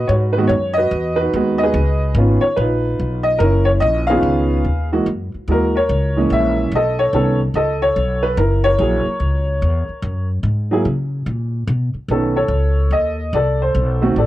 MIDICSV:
0, 0, Header, 1, 4, 480
1, 0, Start_track
1, 0, Tempo, 413508
1, 115, Time_signature, 4, 2, 24, 8
1, 16558, End_track
2, 0, Start_track
2, 0, Title_t, "Upright piano"
2, 0, Program_c, 0, 0
2, 0, Note_on_c, 0, 71, 65
2, 86, Note_on_c, 0, 73, 71
2, 123, Note_on_c, 0, 66, 55
2, 159, Note_off_c, 0, 73, 0
2, 362, Note_off_c, 0, 71, 0
2, 379, Note_on_c, 0, 71, 79
2, 428, Note_on_c, 0, 51, 71
2, 429, Note_off_c, 0, 66, 0
2, 438, Note_on_c, 0, 56, 66
2, 442, Note_on_c, 0, 59, 64
2, 446, Note_on_c, 0, 66, 83
2, 548, Note_on_c, 0, 73, 85
2, 559, Note_off_c, 0, 71, 0
2, 580, Note_off_c, 0, 51, 0
2, 585, Note_off_c, 0, 56, 0
2, 587, Note_off_c, 0, 59, 0
2, 589, Note_off_c, 0, 66, 0
2, 853, Note_on_c, 0, 75, 98
2, 859, Note_off_c, 0, 73, 0
2, 903, Note_on_c, 0, 71, 66
2, 911, Note_on_c, 0, 66, 62
2, 1329, Note_off_c, 0, 71, 0
2, 1346, Note_on_c, 0, 71, 83
2, 1375, Note_off_c, 0, 75, 0
2, 1382, Note_off_c, 0, 66, 0
2, 1399, Note_on_c, 0, 63, 60
2, 1400, Note_on_c, 0, 66, 63
2, 1558, Note_off_c, 0, 66, 0
2, 1563, Note_on_c, 0, 51, 62
2, 1570, Note_on_c, 0, 56, 58
2, 1573, Note_on_c, 0, 59, 51
2, 1575, Note_on_c, 0, 66, 69
2, 1837, Note_on_c, 0, 75, 90
2, 1861, Note_off_c, 0, 71, 0
2, 1893, Note_on_c, 0, 71, 71
2, 1897, Note_on_c, 0, 68, 68
2, 1998, Note_off_c, 0, 63, 0
2, 2040, Note_off_c, 0, 51, 0
2, 2043, Note_off_c, 0, 56, 0
2, 2045, Note_off_c, 0, 59, 0
2, 2046, Note_off_c, 0, 66, 0
2, 2455, Note_off_c, 0, 75, 0
2, 2520, Note_on_c, 0, 51, 59
2, 2522, Note_on_c, 0, 59, 60
2, 2526, Note_on_c, 0, 61, 53
2, 2526, Note_on_c, 0, 65, 68
2, 2794, Note_off_c, 0, 71, 0
2, 2795, Note_off_c, 0, 68, 0
2, 2797, Note_off_c, 0, 51, 0
2, 2797, Note_on_c, 0, 73, 87
2, 2798, Note_off_c, 0, 59, 0
2, 2800, Note_off_c, 0, 65, 0
2, 2801, Note_off_c, 0, 61, 0
2, 2976, Note_on_c, 0, 71, 79
2, 2987, Note_off_c, 0, 73, 0
2, 3027, Note_on_c, 0, 65, 60
2, 3029, Note_on_c, 0, 63, 57
2, 3730, Note_off_c, 0, 71, 0
2, 3753, Note_on_c, 0, 75, 87
2, 3925, Note_off_c, 0, 65, 0
2, 3927, Note_off_c, 0, 63, 0
2, 3929, Note_on_c, 0, 70, 88
2, 3946, Note_off_c, 0, 75, 0
2, 3979, Note_on_c, 0, 64, 58
2, 3985, Note_on_c, 0, 61, 58
2, 4231, Note_off_c, 0, 70, 0
2, 4236, Note_on_c, 0, 73, 90
2, 4294, Note_off_c, 0, 73, 0
2, 4414, Note_on_c, 0, 75, 100
2, 4723, Note_on_c, 0, 77, 97
2, 4741, Note_off_c, 0, 61, 0
2, 4745, Note_off_c, 0, 75, 0
2, 4752, Note_on_c, 0, 51, 68
2, 4753, Note_on_c, 0, 59, 64
2, 4758, Note_on_c, 0, 61, 67
2, 4763, Note_on_c, 0, 65, 80
2, 4763, Note_on_c, 0, 68, 66
2, 4763, Note_on_c, 0, 71, 61
2, 4881, Note_off_c, 0, 64, 0
2, 5365, Note_off_c, 0, 51, 0
2, 5366, Note_off_c, 0, 59, 0
2, 5369, Note_off_c, 0, 61, 0
2, 5371, Note_off_c, 0, 65, 0
2, 5649, Note_off_c, 0, 77, 0
2, 5669, Note_off_c, 0, 68, 0
2, 5669, Note_off_c, 0, 71, 0
2, 5714, Note_on_c, 0, 52, 66
2, 5717, Note_on_c, 0, 56, 59
2, 5720, Note_on_c, 0, 66, 75
2, 5725, Note_on_c, 0, 58, 55
2, 5863, Note_off_c, 0, 52, 0
2, 5865, Note_off_c, 0, 56, 0
2, 5867, Note_off_c, 0, 66, 0
2, 5869, Note_off_c, 0, 58, 0
2, 6365, Note_on_c, 0, 52, 58
2, 6371, Note_on_c, 0, 56, 54
2, 6385, Note_on_c, 0, 58, 56
2, 6385, Note_on_c, 0, 66, 64
2, 6402, Note_on_c, 0, 70, 83
2, 6640, Note_off_c, 0, 52, 0
2, 6643, Note_off_c, 0, 56, 0
2, 6650, Note_off_c, 0, 58, 0
2, 6650, Note_off_c, 0, 66, 0
2, 6663, Note_off_c, 0, 70, 0
2, 6681, Note_on_c, 0, 70, 59
2, 6694, Note_on_c, 0, 73, 86
2, 7155, Note_on_c, 0, 52, 61
2, 7162, Note_on_c, 0, 56, 55
2, 7167, Note_on_c, 0, 58, 55
2, 7179, Note_on_c, 0, 61, 70
2, 7341, Note_on_c, 0, 76, 97
2, 7350, Note_off_c, 0, 73, 0
2, 7588, Note_off_c, 0, 70, 0
2, 7767, Note_off_c, 0, 52, 0
2, 7771, Note_off_c, 0, 56, 0
2, 7774, Note_off_c, 0, 58, 0
2, 7777, Note_off_c, 0, 76, 0
2, 7779, Note_off_c, 0, 61, 0
2, 7839, Note_on_c, 0, 75, 85
2, 7842, Note_on_c, 0, 69, 59
2, 8114, Note_on_c, 0, 73, 92
2, 8137, Note_off_c, 0, 75, 0
2, 8275, Note_on_c, 0, 51, 54
2, 8277, Note_off_c, 0, 69, 0
2, 8281, Note_on_c, 0, 59, 52
2, 8295, Note_on_c, 0, 69, 68
2, 8296, Note_on_c, 0, 61, 53
2, 8556, Note_off_c, 0, 51, 0
2, 8558, Note_off_c, 0, 73, 0
2, 8559, Note_off_c, 0, 59, 0
2, 8566, Note_off_c, 0, 61, 0
2, 8566, Note_off_c, 0, 69, 0
2, 8769, Note_on_c, 0, 75, 84
2, 8777, Note_on_c, 0, 69, 62
2, 9052, Note_off_c, 0, 75, 0
2, 9079, Note_on_c, 0, 73, 96
2, 9549, Note_on_c, 0, 71, 84
2, 9568, Note_off_c, 0, 73, 0
2, 9681, Note_off_c, 0, 69, 0
2, 9723, Note_on_c, 0, 70, 75
2, 9724, Note_off_c, 0, 71, 0
2, 9738, Note_on_c, 0, 64, 53
2, 10027, Note_on_c, 0, 73, 100
2, 10033, Note_off_c, 0, 70, 0
2, 10050, Note_on_c, 0, 70, 57
2, 10191, Note_off_c, 0, 64, 0
2, 10203, Note_on_c, 0, 54, 59
2, 10208, Note_on_c, 0, 64, 47
2, 10211, Note_on_c, 0, 58, 48
2, 10217, Note_on_c, 0, 68, 56
2, 10480, Note_off_c, 0, 54, 0
2, 10482, Note_off_c, 0, 64, 0
2, 10484, Note_off_c, 0, 58, 0
2, 10487, Note_off_c, 0, 68, 0
2, 11902, Note_off_c, 0, 73, 0
2, 11913, Note_off_c, 0, 70, 0
2, 12433, Note_on_c, 0, 54, 69
2, 12447, Note_on_c, 0, 58, 55
2, 12447, Note_on_c, 0, 64, 60
2, 12452, Note_on_c, 0, 68, 72
2, 12584, Note_off_c, 0, 54, 0
2, 12590, Note_off_c, 0, 64, 0
2, 12591, Note_off_c, 0, 58, 0
2, 12593, Note_off_c, 0, 68, 0
2, 14046, Note_on_c, 0, 51, 63
2, 14054, Note_on_c, 0, 59, 55
2, 14057, Note_on_c, 0, 61, 54
2, 14059, Note_on_c, 0, 69, 60
2, 14320, Note_off_c, 0, 51, 0
2, 14324, Note_off_c, 0, 59, 0
2, 14326, Note_off_c, 0, 61, 0
2, 14327, Note_off_c, 0, 69, 0
2, 14349, Note_on_c, 0, 69, 54
2, 14354, Note_on_c, 0, 73, 75
2, 15002, Note_on_c, 0, 75, 87
2, 15019, Note_off_c, 0, 73, 0
2, 15260, Note_off_c, 0, 69, 0
2, 15487, Note_on_c, 0, 74, 81
2, 15492, Note_off_c, 0, 75, 0
2, 15500, Note_on_c, 0, 69, 58
2, 15800, Note_off_c, 0, 74, 0
2, 15809, Note_on_c, 0, 72, 79
2, 16243, Note_off_c, 0, 72, 0
2, 16267, Note_on_c, 0, 51, 69
2, 16271, Note_on_c, 0, 57, 67
2, 16273, Note_on_c, 0, 60, 60
2, 16278, Note_on_c, 0, 66, 80
2, 16399, Note_off_c, 0, 69, 0
2, 16418, Note_off_c, 0, 51, 0
2, 16420, Note_off_c, 0, 57, 0
2, 16421, Note_off_c, 0, 60, 0
2, 16423, Note_off_c, 0, 66, 0
2, 16455, Note_on_c, 0, 74, 78
2, 16466, Note_on_c, 0, 69, 57
2, 16558, Note_off_c, 0, 69, 0
2, 16558, Note_off_c, 0, 74, 0
2, 16558, End_track
3, 0, Start_track
3, 0, Title_t, "Upright bass"
3, 0, Program_c, 1, 32
3, 103, Note_on_c, 1, 44, 89
3, 565, Note_off_c, 1, 44, 0
3, 572, Note_on_c, 1, 42, 86
3, 1049, Note_off_c, 1, 42, 0
3, 1057, Note_on_c, 1, 40, 83
3, 1532, Note_off_c, 1, 40, 0
3, 1550, Note_on_c, 1, 39, 82
3, 2009, Note_off_c, 1, 39, 0
3, 2016, Note_on_c, 1, 37, 88
3, 2484, Note_off_c, 1, 37, 0
3, 2491, Note_on_c, 1, 32, 94
3, 2791, Note_off_c, 1, 32, 0
3, 2987, Note_on_c, 1, 34, 82
3, 3457, Note_off_c, 1, 34, 0
3, 3476, Note_on_c, 1, 35, 83
3, 3942, Note_off_c, 1, 35, 0
3, 3947, Note_on_c, 1, 30, 93
3, 4417, Note_off_c, 1, 30, 0
3, 4433, Note_on_c, 1, 34, 87
3, 4901, Note_off_c, 1, 34, 0
3, 4906, Note_on_c, 1, 37, 75
3, 5377, Note_off_c, 1, 37, 0
3, 5393, Note_on_c, 1, 39, 74
3, 5861, Note_off_c, 1, 39, 0
3, 5875, Note_on_c, 1, 42, 81
3, 6164, Note_off_c, 1, 42, 0
3, 6356, Note_on_c, 1, 39, 79
3, 6823, Note_off_c, 1, 39, 0
3, 6839, Note_on_c, 1, 37, 83
3, 7304, Note_off_c, 1, 37, 0
3, 7314, Note_on_c, 1, 34, 81
3, 7782, Note_off_c, 1, 34, 0
3, 7796, Note_on_c, 1, 35, 83
3, 8263, Note_off_c, 1, 35, 0
3, 8276, Note_on_c, 1, 36, 86
3, 8743, Note_off_c, 1, 36, 0
3, 8752, Note_on_c, 1, 37, 76
3, 9221, Note_off_c, 1, 37, 0
3, 9240, Note_on_c, 1, 35, 81
3, 9705, Note_off_c, 1, 35, 0
3, 9719, Note_on_c, 1, 30, 91
3, 10185, Note_off_c, 1, 30, 0
3, 10198, Note_on_c, 1, 34, 87
3, 10487, Note_off_c, 1, 34, 0
3, 10676, Note_on_c, 1, 37, 77
3, 11143, Note_off_c, 1, 37, 0
3, 11167, Note_on_c, 1, 40, 86
3, 11452, Note_off_c, 1, 40, 0
3, 11635, Note_on_c, 1, 42, 90
3, 12102, Note_off_c, 1, 42, 0
3, 12107, Note_on_c, 1, 44, 84
3, 12578, Note_off_c, 1, 44, 0
3, 12595, Note_on_c, 1, 49, 77
3, 13062, Note_off_c, 1, 49, 0
3, 13073, Note_on_c, 1, 46, 80
3, 13540, Note_off_c, 1, 46, 0
3, 13551, Note_on_c, 1, 47, 91
3, 13842, Note_off_c, 1, 47, 0
3, 14027, Note_on_c, 1, 35, 79
3, 14483, Note_off_c, 1, 35, 0
3, 14490, Note_on_c, 1, 37, 82
3, 14968, Note_off_c, 1, 37, 0
3, 14982, Note_on_c, 1, 39, 79
3, 15453, Note_off_c, 1, 39, 0
3, 15473, Note_on_c, 1, 36, 86
3, 15938, Note_off_c, 1, 36, 0
3, 15956, Note_on_c, 1, 35, 85
3, 16420, Note_off_c, 1, 35, 0
3, 16438, Note_on_c, 1, 33, 81
3, 16558, Note_off_c, 1, 33, 0
3, 16558, End_track
4, 0, Start_track
4, 0, Title_t, "Muted upright bass strokes"
4, 2830, Note_on_c, 9, 29, 37
4, 2946, Note_off_c, 9, 29, 0
4, 6200, Note_on_c, 9, 29, 35
4, 6316, Note_off_c, 9, 29, 0
4, 10515, Note_on_c, 9, 29, 38
4, 10631, Note_off_c, 9, 29, 0
4, 11478, Note_on_c, 9, 29, 37
4, 11594, Note_off_c, 9, 29, 0
4, 13864, Note_on_c, 9, 29, 37
4, 13980, Note_off_c, 9, 29, 0
4, 16558, End_track
0, 0, End_of_file